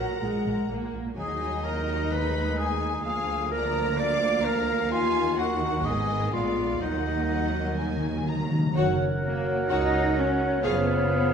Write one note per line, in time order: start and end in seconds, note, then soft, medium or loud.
0.00 0.18 F#3 medium
0.00 0.69 A#4 medium
0.00 0.90 F#5 medium
0.00 0.68 A#5 soft
0.10 0.14 A#2 soft
0.21 0.26 A#1 soft
0.21 0.27 A#2 soft
0.21 0.69 G#3 soft
0.34 0.38 A#2 soft
0.45 0.50 A#1 soft
0.45 0.50 A#2 soft
0.69 0.74 A#1 soft
0.69 0.74 A#2 soft
0.69 1.16 A#3 soft
0.81 0.86 A#2 soft
0.93 0.97 A#1 soft
0.93 0.98 A#2 soft
1.05 1.10 A#2 soft
1.16 3.01 D#2 medium
1.16 1.84 D#3 medium
1.16 2.07 F#3 soft
1.16 3.01 D#4 soft
1.16 1.66 G#4 medium
1.16 2.54 D#5 medium
1.16 1.62 G#5 medium
1.65 2.13 A#4 medium
1.65 2.12 A#5 soft
2.12 2.78 D#3 medium
2.12 3.01 G#3 soft
2.12 2.59 B4 medium
2.12 2.58 B5 medium
2.58 3.04 G#4 medium
2.58 3.04 G#5 medium
2.58 3.06 G#5 medium
3.04 4.88 D2 medium
3.04 4.88 F3 medium
3.04 5.81 A#3 medium
3.04 3.51 G#4 medium
3.04 3.50 F5 medium
3.04 3.51 G#5 medium
3.51 3.99 A#4 medium
3.51 3.98 D5 medium
3.51 3.98 A#5 medium
3.98 4.46 D5 medium
3.98 4.90 F5 medium
3.98 4.45 D6 medium
4.45 4.91 A#4 medium
4.45 4.92 A#5 medium
4.91 5.83 D#2 medium
4.91 6.28 D#3 medium
4.91 5.40 F4 medium
4.91 5.37 F5 medium
4.91 5.38 G#5 medium
5.38 5.86 F#4 medium
5.38 5.85 F#5 medium
5.85 6.33 G#1 medium
5.85 6.32 G#2 medium
5.85 6.77 B3 medium
5.85 6.32 G#4 medium
5.85 6.33 D#5 medium
5.85 6.33 G#5 medium
6.32 6.81 A#1 medium
6.32 6.80 A#2 medium
6.32 6.78 G#3 soft
6.32 6.80 F4 medium
6.32 6.80 D5 soft
6.32 6.80 F5 medium
6.80 8.52 D#2 medium
6.80 8.52 D#3 medium
6.80 6.88 D#3 soft
6.80 8.52 F#3 soft
6.80 8.51 A#3 soft
6.80 8.24 D#4 medium
6.80 8.27 D#5 medium
6.80 7.24 F#5 medium
6.96 7.03 D#3 soft
7.04 7.10 D#3 soft
7.11 7.18 D#3 soft
7.19 7.25 D#3 soft
7.29 7.75 F#5 medium
7.34 7.41 D#3 soft
7.43 7.49 D#3 soft
7.50 7.57 D#3 soft
7.58 7.65 D#3 soft
7.66 7.73 D#3 soft
7.74 7.81 D#3 soft
7.74 8.26 G#5 medium
7.82 7.88 D#3 soft
7.89 7.96 D#3 soft
7.97 8.04 D#3 soft
8.05 8.12 D#3 soft
8.13 8.19 D#3 medium
8.21 8.27 D#3 medium
8.28 8.35 D#3 medium
8.28 8.76 A#5 medium
8.36 8.42 D#3 medium
8.44 8.50 D#3 medium
8.51 8.58 D#3 medium
8.59 8.66 D#3 medium
8.67 8.74 D#3 medium
8.75 9.15 F#1 medium
8.75 10.65 F#3 medium
8.75 10.58 F#4 medium
8.75 8.97 F#4 medium
8.75 10.64 A#4 medium
8.75 11.34 C#5 medium
8.75 8.98 C#5 medium
8.75 10.59 F#5 medium
8.75 8.98 F#5 medium
9.23 9.67 A#3 medium
9.69 10.08 C#2 medium
9.69 10.15 D#4 medium
9.69 9.91 F#4 medium
9.69 9.91 C#5 medium
9.69 9.91 F#5 medium
10.16 10.63 C#4 medium
10.63 11.02 F#1 medium
10.63 11.34 F3 medium
10.63 11.34 B3 medium
10.63 10.84 G#4 medium
10.63 11.34 G#4 medium
10.63 10.84 C#5 medium
10.63 11.34 F5 medium
10.63 10.84 F5 medium